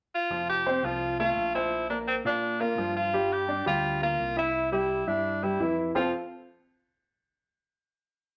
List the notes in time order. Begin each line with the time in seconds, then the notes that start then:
0.15 F4
0.30 F1 F3 F4
0.49 G4
0.66 C4 C5
0.83 C2 F3 F4
1.20 A3 F4 A4
1.36 A#1
1.55 F3 E4 C5
1.90 A#3 D4 A#4
2.08 C4
2.25 A#2 D4 F4 F5
2.60 A#3 F4 A#4
2.78 G2 F3 F4
2.97 F4
3.13 G3 G4
3.33 G4
3.48 D4 D5
3.66 D2 G3 F4 G4
4.02 A#3 F4 A#4
4.19 C2
4.37 E4 E5
4.72 G3 E4 G4
5.07 G2 D4 E4 E5
5.43 G3 E4 G4
5.59 F2 E3 E4
5.95 F1 F3 C4 F4 A4 C5 F5